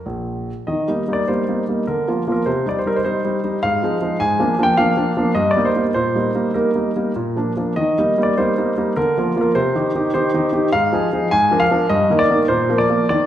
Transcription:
0.06 0.49 A#1 soft
0.67 0.87 D#3 soft
0.67 1.08 D#5 soft
0.88 1.02 G3 soft
0.88 1.02 A#3 soft
0.88 1.03 D#4 soft
1.08 1.22 G3 soft
1.08 1.22 A#3 soft
1.08 1.23 D#4 soft
1.13 1.28 D5 soft
1.28 1.42 G3 soft
1.28 1.43 A#3 soft
1.28 1.43 D#4 soft
1.28 1.63 C5 soft
1.48 1.62 G3 soft
1.48 1.62 A#3 soft
1.48 1.63 D#4 soft
1.68 1.82 G3 soft
1.68 1.83 A#3 soft
1.68 1.83 D#4 soft
1.87 2.07 D3 soft
1.87 2.30 A#4 soft
2.08 2.21 F3 soft
2.08 2.22 A#3 soft
2.08 2.22 F4 soft
2.28 2.41 F3 soft
2.28 2.41 A#3 soft
2.28 2.42 F4 soft
2.32 2.46 A#4 soft
2.46 2.65 C3 soft
2.46 2.66 C5 soft
2.66 2.80 G3 soft
2.66 2.80 D#4 soft
2.66 2.78 D5 soft
2.79 2.87 C5 soft
2.86 3.00 G3 soft
2.86 3.00 D#4 soft
2.86 2.96 A#4 soft
2.96 3.03 C5 soft
3.04 3.19 G3 soft
3.04 3.19 D#4 soft
3.04 3.58 C5 medium
3.25 3.38 G3 soft
3.25 3.39 D#4 soft
3.44 3.58 G3 soft
3.44 3.58 D#4 soft
3.63 3.82 G#2 soft
3.63 4.20 F5 medium
3.83 3.96 F3 soft
3.83 3.97 G#3 soft
3.83 3.97 D#4 soft
4.02 4.15 F3 soft
4.02 4.16 G#3 soft
4.02 4.16 D#4 soft
4.20 4.39 G#2 soft
4.20 4.59 G#5 medium
4.40 4.53 F3 soft
4.40 4.54 A#3 soft
4.40 4.54 D4 soft
4.59 4.73 F3 soft
4.59 4.73 A#3 soft
4.59 4.73 D4 soft
4.63 4.78 G5 medium
4.77 4.92 F3 soft
4.77 4.92 A#3 soft
4.77 4.92 D4 soft
4.77 5.32 F5 medium
4.97 5.11 F3 soft
4.97 5.11 A#3 soft
4.97 5.12 D4 soft
5.17 5.31 F3 soft
5.17 5.31 A#3 soft
5.17 5.31 D4 soft
5.35 5.55 G2 soft
5.35 5.50 D#5 medium
5.51 5.66 D5 medium
5.56 5.70 G3 soft
5.56 5.71 A#3 soft
5.56 5.71 D#4 soft
5.65 5.83 C5 medium
5.76 5.90 G3 soft
5.76 5.90 A#3 soft
5.76 5.90 D#4 soft
5.94 6.15 A#2 soft
5.94 6.55 C5 medium
6.15 6.30 G3 soft
6.15 6.30 A#3 soft
6.15 6.30 D#4 soft
6.35 6.49 G3 soft
6.35 6.50 A#3 soft
6.35 6.50 D#4 soft
6.54 6.70 G3 soft
6.54 6.70 A#3 soft
6.54 6.70 D#4 soft
6.54 7.10 A#4 soft
6.75 6.90 G3 soft
6.75 6.90 A#3 soft
6.75 6.90 D#4 soft
6.96 7.11 G3 soft
6.96 7.11 A#3 soft
6.96 7.11 D#4 soft
7.16 7.36 A#2 soft
7.36 7.51 F3 soft
7.36 7.52 A#3 soft
7.36 7.52 D4 soft
7.57 7.72 F3 soft
7.57 7.72 A#3 soft
7.57 7.72 D4 soft
7.76 7.97 D#3 soft
7.76 8.18 D#5 medium
7.98 8.13 G3 soft
7.98 8.13 A#3 soft
7.98 8.13 D#4 soft
8.18 8.32 G3 soft
8.18 8.32 A#3 soft
8.18 8.33 D#4 soft
8.23 8.38 D5 medium
8.38 8.52 G3 soft
8.38 8.53 A#3 soft
8.38 8.53 D#4 soft
8.38 8.97 C5 medium
8.58 8.72 G3 soft
8.58 8.72 A#3 soft
8.58 8.73 D#4 soft
8.77 8.92 G3 soft
8.77 8.92 A#3 soft
8.77 8.92 D#4 soft
8.96 9.16 D3 soft
8.96 9.37 A#4 medium
9.18 9.31 F3 soft
9.18 9.31 A#3 soft
9.18 9.32 F4 soft
9.36 9.50 F3 soft
9.36 9.51 A#3 soft
9.36 9.51 F4 soft
9.41 9.55 A#4 medium
9.55 9.74 C3 soft
9.55 10.12 C5 medium
9.75 9.89 D#3 soft
9.75 9.89 D#4 soft
9.75 9.90 G4 soft
9.95 10.09 D#3 soft
9.95 10.09 D#4 soft
9.95 10.10 G4 soft
10.14 10.29 D#3 soft
10.14 10.29 D#4 soft
10.14 10.29 G4 soft
10.14 10.73 C5 medium
10.34 10.48 D#3 soft
10.34 10.49 D#4 soft
10.34 10.49 G4 soft
10.53 10.67 D#3 soft
10.53 10.68 D#4 soft
10.53 10.68 G4 soft
10.73 10.92 G#2 soft
10.73 11.32 F5 medium
10.93 11.07 F3 soft
10.93 11.07 D#4 soft
10.93 11.08 G#4 soft
11.13 11.27 F3 soft
11.13 11.27 D#4 soft
11.13 11.27 G#4 soft
11.31 11.51 G#2 soft
11.31 11.61 G#5 medium
11.51 11.65 F3 soft
11.51 11.66 D4 soft
11.51 11.66 A#4 soft
11.60 11.87 F5 medium
11.71 11.85 F3 soft
11.71 11.85 D4 soft
11.71 11.86 A#4 soft
11.89 12.09 G2 soft
11.89 12.19 D#5 medium
12.10 12.24 D#3 soft
12.10 12.25 A#3 soft
12.10 12.25 A#4 soft
12.19 12.37 D5 medium
12.30 12.44 D#3 soft
12.30 12.44 A#3 soft
12.30 12.45 A#4 soft
12.48 12.68 A#2 soft
12.48 12.76 C5 medium
12.69 12.84 F3 soft
12.69 12.84 A#3 soft
12.69 12.84 A#4 soft
12.78 13.06 D5 medium
12.90 13.04 F3 soft
12.90 13.05 A#3 soft
12.90 13.05 A#4 soft
13.09 13.26 D#3 soft
13.09 13.26 D5 medium

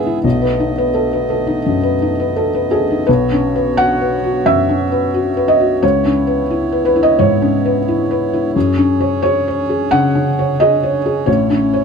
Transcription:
0.00 0.27 G#2 medium
0.00 0.22 B3 medium
0.00 0.07 E4 medium
0.00 0.20 G#4 medium
0.00 0.27 G#4 medium
0.00 0.27 B4 medium
0.00 0.19 E5 medium
0.07 0.24 E4 soft
0.23 1.62 B1 medium
0.23 3.08 A3 medium
0.23 3.03 B3 medium
0.23 3.07 D#5 medium
0.42 0.71 B4 medium
0.60 0.88 D#4 soft
0.78 1.06 B4 medium
0.94 1.23 A4 medium
1.13 1.42 B4 soft
1.30 1.59 A4 soft
1.47 1.76 D#4 soft
1.66 1.95 F#2 soft
1.83 2.12 B4 soft
2.02 2.30 D#4 soft
2.20 2.48 B4 soft
2.36 2.65 A4 medium
2.55 2.83 B4 soft
2.71 3.04 G#4 medium
2.71 3.01 A4 soft
2.91 3.08 D#4 soft
3.07 4.43 B1 medium
3.07 8.52 B3 medium
3.07 5.79 F#4 medium
3.07 3.54 B4 medium
3.07 8.51 C#5 medium
3.32 3.69 C#4 medium
3.56 3.92 B4 medium
3.77 4.15 F#4 medium
3.77 4.42 F#5 loud
4.01 4.38 B4 medium
4.24 4.60 F#4 medium
4.46 4.82 F#2 medium
4.46 5.44 E5 medium
4.69 5.05 C#4 medium
4.92 5.28 B4 medium
5.14 5.51 F#4 medium
5.37 5.73 B4 medium
5.48 5.80 D#5 medium
5.60 5.82 F#4 medium
5.81 7.15 C#2 medium
5.81 8.54 E4 medium
5.81 6.81 C#5 medium
6.05 6.41 C#4 medium
6.27 6.64 B4 medium
6.50 6.87 E4 medium
6.72 6.84 B4 medium
6.85 7.01 B4 medium
6.96 7.32 E4 medium
7.03 7.18 D#5 medium
7.19 7.55 G#2 medium
7.19 7.83 C#5 medium
7.42 7.78 C#4 medium
7.65 8.01 B4 medium
7.88 8.24 E4 medium
8.11 8.46 B4 medium
8.33 8.56 E4 medium
8.53 9.88 F#2 medium
8.53 11.84 C#4 medium
8.53 11.26 G#4 medium
8.53 11.84 C#5 medium
8.78 9.14 C#4 medium
9.01 9.21 C#5 medium
9.22 9.61 G#4 medium
9.22 9.46 C#5 medium
9.48 9.84 C#5 medium
9.69 10.06 G#4 medium
9.91 10.28 C#3 medium
9.91 10.55 F#5 medium
10.15 10.51 C#4 medium
10.39 10.74 C#5 medium
10.60 10.97 G#4 medium
10.60 11.23 D#5 loud
10.83 11.19 C#5 medium
11.06 11.28 G#4 medium
11.26 11.84 A1 medium
11.26 11.84 E4 medium
11.26 11.72 C#5 medium
11.50 11.84 C#4 medium
11.74 11.84 C#5 medium

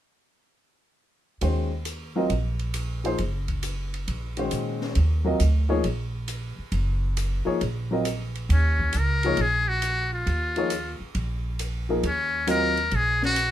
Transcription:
1.41 2.26 D#2 medium
1.41 1.68 D#3 soft
1.41 1.68 G#3 soft
1.41 1.68 C#4 soft
1.41 1.69 F#4 soft
1.41 1.69 C5 soft
1.41 ride medium
1.85 hi-hat pedal medium
1.85 ride medium
2.16 2.28 F#3 medium
2.16 2.28 C4 medium
2.16 2.28 F4 medium
2.16 2.29 A#4 medium
2.16 2.29 D#5 medium
2.30 3.14 A#1 medium
2.30 ride soft
2.59 ride soft
2.74 hi-hat pedal soft
2.74 ride medium
3.04 3.17 F3 soft
3.04 3.17 A#3 soft
3.04 3.17 D#4 soft
3.04 3.17 G#4 soft
3.04 3.18 C5 medium
3.04 ride soft
3.18 4.03 F#1 medium
3.18 ride soft
3.48 kick soft
3.48 ride soft
3.63 hi-hat pedal medium
3.63 ride medium
3.94 ride soft
4.08 4.48 A#1 medium
4.08 ride soft
4.37 4.93 D#3 soft
4.37 4.93 G#3 soft
4.37 4.93 C#4 soft
4.37 4.93 F#4 soft
4.37 4.94 C5 medium
4.37 ride soft
4.51 4.92 A#2 medium
4.51 hi-hat pedal soft
4.51 ride soft
4.81 snare soft
4.95 5.37 D#2 medium
4.95 ride soft
5.24 5.38 F#3 medium
5.24 5.38 C4 soft
5.24 5.38 F4 medium
5.24 5.38 A#4 medium
5.24 5.39 D#5 medium
5.40 5.81 D2 medium
5.40 hi-hat pedal soft
5.40 ride medium
5.69 5.82 F3 medium
5.69 5.82 A#3 medium
5.69 5.82 D#4 medium
5.69 5.83 G#4 medium
5.69 5.83 C#5 medium
5.84 6.54 A#1 medium
5.84 ride soft
6.28 hi-hat pedal soft
6.28 ride medium
6.58 muted upright bass stroke soft
6.72 7.42 F#1 medium
6.72 ride soft
7.17 hi-hat pedal medium
7.17 ride medium
7.45 7.59 F3 medium
7.45 7.59 A#3 medium
7.45 7.59 D#4 medium
7.45 7.59 G#4 medium
7.45 7.59 C#5 medium
7.45 muted upright bass stroke soft
7.61 8.46 A#1 medium
7.61 ride soft
7.91 8.04 F#3 medium
7.91 8.04 C4 soft
7.91 8.04 F4 soft
7.91 8.05 A#4 medium
7.91 8.05 D#5 medium
8.05 hi-hat pedal medium
8.05 ride medium
8.35 ride soft
8.49 8.90 D#2 medium
8.49 ride medium
8.53 9.00 C#4 medium
8.79 kick medium
8.93 9.35 C#2 medium
8.93 hi-hat pedal medium
8.93 ride medium
8.98 9.43 A#4 medium
9.23 9.37 F3 medium
9.23 9.37 A#3 medium
9.23 9.37 D#4 medium
9.23 9.38 G#4 medium
9.23 9.38 C#5 medium
9.23 ride soft
9.37 10.22 A#1 medium
9.37 ride soft
9.42 9.70 G#4 medium
9.69 10.12 F#4 medium
9.82 hi-hat pedal medium
9.82 ride medium
10.13 10.97 F4 medium
10.26 10.97 D#2 medium
10.26 ride soft
10.56 10.69 F3 medium
10.56 10.70 A#3 medium
10.56 10.70 D#4 medium
10.56 10.70 G#4 medium
10.56 10.70 C#5 medium
10.56 ride soft
10.70 hi-hat pedal medium
10.70 ride medium
11.00 muted upright bass stroke soft
11.15 11.99 A#1 medium
11.15 ride soft
11.59 hi-hat pedal medium
11.59 ride medium
11.89 12.02 F3 medium
11.89 12.02 A#3 soft
11.89 12.02 D#4 soft
11.89 12.03 G#4 soft
11.89 12.03 A#4 medium
12.03 12.88 D#2 medium
12.03 12.47 C#4 medium
12.03 ride medium
12.47 12.74 F#3 medium
12.47 12.74 C4 medium
12.47 12.75 F4 medium
12.47 12.75 A#4 medium
12.47 12.97 A#4 medium
12.47 12.75 D#5 medium
12.47 hi-hat pedal medium
12.47 ride medium
12.77 ride soft
12.91 13.51 A#1 medium
12.91 ride soft
12.96 13.24 G#4 medium
13.22 13.51 F#4 medium
13.22 snare soft
13.36 hi-hat pedal medium
13.36 ride medium

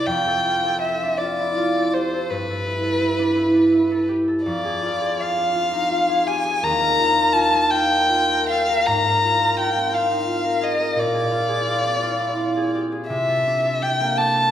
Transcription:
0.00 2.32 C5 soft
0.06 2.31 F2 soft
0.06 0.81 G5 soft
0.27 0.64 A4 soft
0.45 0.82 F4 soft
0.66 1.75 A4 soft
0.82 1.20 F4 soft
0.82 1.20 E5 soft
1.02 3.18 D4 soft
1.18 1.56 F4 soft
1.18 1.95 D5 soft
1.39 1.69 E4 soft
1.57 4.81 F4 soft
1.76 2.12 A4 soft
1.94 2.24 G4 soft
1.94 2.31 C5 soft
2.13 2.48 A4 soft
2.30 4.49 G2 soft
2.30 4.08 B4 soft
2.49 2.82 A4 soft
2.66 3.00 E4 soft
2.83 3.90 A4 soft
3.01 3.35 E4 soft
3.19 3.53 D4 soft
3.36 3.70 E4 soft
3.55 3.85 D4 soft
3.71 4.48 E4 soft
3.91 4.26 A4 soft
4.09 4.40 G4 soft
4.28 4.48 A4 soft
4.45 6.66 F2 soft
4.45 5.22 D5 soft
4.64 4.99 G#4 soft
4.83 5.19 F4 soft
5.01 6.08 G#4 soft
5.20 5.54 F4 soft
5.20 6.29 F5 soft
5.37 6.66 D4 soft
5.55 5.90 F4 soft
5.72 6.03 D#4 soft
5.91 6.98 F4 soft
6.09 6.44 G#4 soft
6.26 6.57 G4 soft
6.26 6.65 G#5 soft
6.45 6.66 G#4 soft
6.63 8.90 D#2 soft
6.63 7.34 A#5 medium
6.81 7.16 A#4 soft
7.00 7.34 F4 soft
7.17 8.30 A#4 soft
7.33 7.71 F4 soft
7.33 7.72 A5 medium
7.54 7.91 D#4 soft
7.71 8.09 F4 soft
7.71 8.48 G5 medium
7.92 8.24 D#4 soft
8.11 9.23 F4 soft
8.31 8.68 A#4 soft
8.49 8.82 A4 soft
8.49 8.88 F5 medium
8.69 9.04 A#4 soft
8.87 11.01 G#2 soft
8.87 9.59 A#5 medium
9.05 9.40 A#4 soft
9.24 9.58 F4 soft
9.41 10.43 A#4 soft
9.60 9.91 F4 soft
9.60 9.95 G5 soft
9.76 11.83 C4 soft
9.93 10.26 F4 soft
9.93 10.65 F5 soft
10.11 10.41 D#4 soft
10.27 11.30 F4 soft
10.44 10.78 A#4 soft
10.61 10.92 G#4 soft
10.61 11.01 D#5 soft
10.79 14.51 A#4 soft
10.96 13.13 A#2 soft
10.96 12.76 D5 medium
11.14 11.47 G#4 soft
11.31 11.65 F4 soft
11.49 12.55 G#4 soft
11.67 12.01 F4 soft
11.84 14.34 C4 soft
12.02 12.36 F4 soft
12.20 12.51 E4 soft
12.38 13.13 F4 soft
12.56 12.91 G#4 soft
12.75 13.05 G4 soft
12.92 13.13 G#4 soft
13.09 14.51 C3 soft
13.09 13.84 E5 medium
13.28 13.63 A4 soft
13.47 13.80 D4 soft
13.64 14.51 A4 soft
13.82 14.17 D4 soft
13.82 14.19 G5 soft
14.00 14.51 A#3 soft
14.17 14.51 D4 soft
14.17 14.51 A5 medium
14.35 14.51 C4 soft

